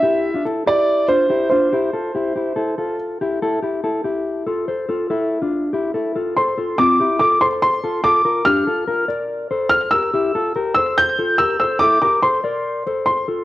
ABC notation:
X:1
M:4/4
L:1/16
Q:1/4=143
K:Aphr
V:1 name="Upright piano"
e4 z2 d4 c4 c2- | c12 z4 | z16 | z12 c'4 |
d'4 d'2 c'2 c'4 d'4 | f'6 z6 f'2 e'2- | e'4 z2 e'2 g'4 e'2 e'2 | d'2 d'2 c'6 z2 c'4 |]
V:2 name="Clean electric guitar"
[EG]3 [DF] [EA]2 [EG]4 [DF]2 [EG]2 [DF]2 | [EG]2 [FA]2 [EG]2 [EG]2 [EA]2 [FA]4 [EG]2 | [EA]2 [EG]2 [EA]2 [EG]4 [FA]2 [Ac]2 [FA]2 | [EA]3 [DF]3 [EG]2 [EA]2 [FA]2 [Ac]2 [FA]2 |
[CF]2 [EG]2 [FA]2 [Ac]4 [FA]2 [FA]2 [FB]2 | [DG]2 [FA]2 [FB]2 [Bd]4 [Ac]4 [GB]2 | [EG]2 [FA]2 [GB]2 [Ac]4 [FA]2 [GB]2 [Ac]2 | [EA]2 [GB]2 [Ac]2 [Bd]4 [Ac]4 [FA]2 |]